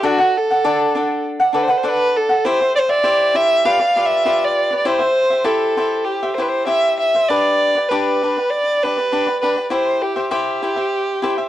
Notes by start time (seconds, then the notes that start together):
0.03 D4 F#4 A4 D5 F#5
0.18 A4 D5 F#5
0.37 A4
0.50 A4 D5 F#5
0.64 D4 A4 D5 F#5
0.95 D4 A4 D5 F#5
1.40 A4 D5 F#5
1.53 D4 A4 B4 D5 F#5
1.63 C5
1.68 A4 B4 D5 F#5
1.77 C5
1.83 D4 A4 D5 F#5
1.89 B4
2.17 A4
2.29 A4 D5 F#5
2.45 E4 G4 C5 E5
2.61 G4 C5 E5
2.76 C5 D5
2.89 G4 C5 D5 E5
3.03 E4 G4 C5 E5
3.34 E4 G4 C5 E5
3.65 F4 G4 B4 D5 F5
3.80 G4 B4 D5
3.96 F4 G4 B4 D5
4.06 E5
4.25 F4 G4 B4 D5
4.45 D5
4.71 G4 B4 D5
4.78 D5
4.85 E4 G4 C5 E5
4.99 G4 C5 E5
5.30 G4 C5 E5
5.44 E4 G4 A4 C5 E5
5.77 E4 G4 C5 E5
6.05 G4
6.23 G4 C5 E5
6.35 E4 C5
6.39 G4 B4 C5 E5
6.48 C5
6.67 E4 G4 C5 E5
6.99 E5
7.15 G4 C5 E5
7.29 D4 G4 B4 D5
7.75 G4 B4 D5
7.89 D4 G4 B4 D5
8.23 D4 G4 B4 D5
8.36 G4 B4 D5
8.50 D5
8.83 D4 G4 B4 D5
8.97 G4 B4 D5
9.12 D4 G4 B4 D5
9.27 G4 B4 D5
9.42 D4 G4 B4 D5
9.56 G4 B4 D5
9.70 E4 G4 C5 E5
10.02 G4
10.16 G4 C5 E5
10.31 E4 G4 C5 E5
10.62 E4 G4 C5 E5
10.76 G4 C5 E5
11.22 E4 G4 C5 E5
11.38 G4 C5 E5